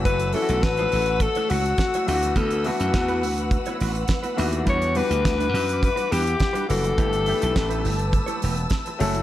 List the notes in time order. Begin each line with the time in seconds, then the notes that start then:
Already playing: F#1 E3 F#3 A3 C#4 F#4 A4 F#5 E6
0.05 A3 E4 F#4 B4 C#5, kick, closed hi-hat
0.19 muted clean electric guitar stroke, closed hi-hat
0.32 E3 F#3 A3 C#4 E4 F#4 A4 C#5, open hi-hat
0.42 F#4
0.48 B1 A3 E4 F#4 C#5, closed hi-hat
0.63 A1 B4, muted clean electric guitar stroke, kick, snare, closed hi-hat
0.77 A3 E4 F#4 C#5, closed hi-hat
0.92 A1 A3 E4 F#4 C#5, open hi-hat
1.06 muted clean electric guitar stroke, closed hi-hat
1.20 A4, muted clean electric guitar stroke, kick, closed hi-hat
1.35 A3 E4 F#4 C#5, closed hi-hat
1.50 C#2 A3 E4 F#4 C#5, open hi-hat
1.66 muted clean electric guitar stroke, closed hi-hat
1.78 muted clean electric guitar stroke, kick, snare, closed hi-hat
1.94 A3 E4 F#4 C#5, closed hi-hat
2.05 D2 E3 A3 B3 D4 F4 F#4 B4 F#5, open hi-hat
2.14 F#4
2.23 muted clean electric guitar stroke, closed hi-hat
2.36 D2 B3 E4 F#4 A4 B4, kick, closed hi-hat
2.51 muted clean electric guitar stroke, closed hi-hat
2.64 E3 A3 B3 D4 E4 F#4, open hi-hat
2.69 F#4 B4
2.80 F#2 B3 E4 F#4 B4, closed hi-hat
2.94 E2, muted clean electric guitar stroke, kick, snare, closed hi-hat
3.08 B3 E4 F#4 B4, closed hi-hat
3.23 D2 B3 E4 F#4 B4, open hi-hat
3.38 muted clean electric guitar stroke, closed hi-hat
3.51 muted clean electric guitar stroke, kick, closed hi-hat
3.66 B3 E4 F#4 C#5, closed hi-hat
3.80 A1 B3 E4 F#4 B4, open hi-hat
3.94 muted clean electric guitar stroke, closed hi-hat
4.08 muted clean electric guitar stroke, kick, snare, closed hi-hat
4.23 B3 E4 F#4 B4, closed hi-hat
4.36 D#2 E3 A3 B3 D4 E4 F#4 B4, open hi-hat
4.52 muted clean electric guitar stroke, closed hi-hat
4.65 E2 E3 G3 B3 D4 E4 F#4 B4 D6, kick, closed hi-hat
4.69 C#5
4.80 muted clean electric guitar stroke, closed hi-hat
4.95 E3 G3 B3 D4 F#4 G4 B4, open hi-hat
5.09 D2 G3 D4 F#4 B4, closed hi-hat
5.24 D2, muted clean electric guitar stroke, kick, snare, closed hi-hat
5.38 G3 D4 F#4 B4, closed hi-hat
5.53 F#2 G3 D4 F#4 B4, open hi-hat
5.68 muted clean electric guitar stroke, closed hi-hat
5.82 B4, muted clean electric guitar stroke, kick, closed hi-hat
5.96 G3 D4 F#4 B4, closed hi-hat
6.11 E2 G3 D4 F#4 G4 B4, open hi-hat
6.27 closed hi-hat
6.40 muted clean electric guitar stroke, kick, snare, closed hi-hat
6.53 G3 D4 F#4 B4, closed hi-hat
6.67 F#1 E3 G3 B3 D4 F#4 A4, muted clean electric guitar stroke, open hi-hat
6.83 muted clean electric guitar stroke, closed hi-hat
6.98 G1 E3 A3 B3 D4 E4 G4 B4 A5 E6, kick, closed hi-hat
7.12 muted clean electric guitar stroke, closed hi-hat
7.26 E3 A3 B3 D4 E4 G4 B4, open hi-hat
7.41 B1 A3 E4 G4 B4, closed hi-hat
7.56 A1, kick, snare, closed hi-hat
7.69 A3 E4 G4 B4, closed hi-hat
7.83 G1 A3 E4 G4 B4, open hi-hat
7.99 muted clean electric guitar stroke, closed hi-hat
8.13 muted clean electric guitar stroke, kick, closed hi-hat
8.26 A3 E4 G4 C#5, closed hi-hat
8.42 E1 A3 E4 G4 B4, open hi-hat
8.57 closed hi-hat
8.70 muted clean electric guitar stroke, kick, snare, closed hi-hat
8.86 muted clean electric guitar stroke, closed hi-hat
8.99 F#1 F#3 A3 C#4 E4 A4 F#5, open hi-hat
9.03 F#4 C#5
9.15 A3 E4 F#4 C#5, closed hi-hat